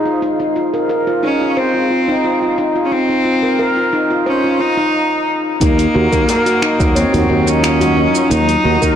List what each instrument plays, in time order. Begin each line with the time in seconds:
Already playing: fretless electric bass D#2, ambient pad D#4 G#4 C5 F5
0.06 handpan F4
0.22 handpan D#4
0.40 handpan D#4
0.56 handpan F4
0.74 handpan A#4
0.89 handpan A#4
1.07 handpan F4
1.23 cello C#4, handpan D#4
1.41 handpan F4
1.57 cello C4, handpan C5
1.74 handpan F4
1.90 handpan F4
2.08 handpan D#4
2.24 handpan F4
2.42 handpan F4
2.58 handpan D#4
2.76 handpan F4
2.85 cello C#4
2.92 cello C4, handpan D#4
3.09 handpan D#4
3.25 handpan F4
3.43 handpan A#4
3.59 handpan A#4
3.76 handpan F4
3.93 handpan D#4
4.11 handpan F4
4.26 cello C#4, handpan C5
4.44 handpan F4
4.60 cello D#4, handpan F4
4.77 handpan D#4
5.61 fretless electric bass D#2, ambient pad F#3 D#4 A#4, cello A#3, handpan D#4, kick, open hi-hat, shaker
5.78 handpan D#4, open hi-hat, shaker
5.95 fretless electric bass D#2, handpan F#4
6.12 fretless electric bass D#2, handpan A#4, kick, open hi-hat, shaker
6.28 handpan A#4, open hi-hat, djembe slap, shaker
6.46 handpan F#4, open hi-hat, shaker
6.62 handpan D#4, finger snap
6.79 fretless electric bass D#2, handpan F#4, kick, djembe slap, shaker
6.96 cello C4, handpan C#5, open hi-hat, djembe tone, shaker
7.13 fretless electric bass D#2, handpan F#4, open hi-hat, djembe bass, shaker
7.29 fretless electric bass D#2, handpan F#4
7.46 cello C#4, handpan D#4, open hi-hat, shaker
7.63 handpan F4, finger snap, open hi-hat, shaker
7.81 handpan F#4, open hi-hat, djembe tone, shaker
7.97 handpan D#4
8.14 handpan F4, shaker
8.30 fretless electric bass D#2, handpan D#4, cello D#4, open hi-hat, shaker
8.48 handpan D#4, open hi-hat, shaker
8.64 fretless electric bass D#2, handpan F#4, djembe slap
8.82 fretless electric bass D#2, handpan A#4, kick, open hi-hat, shaker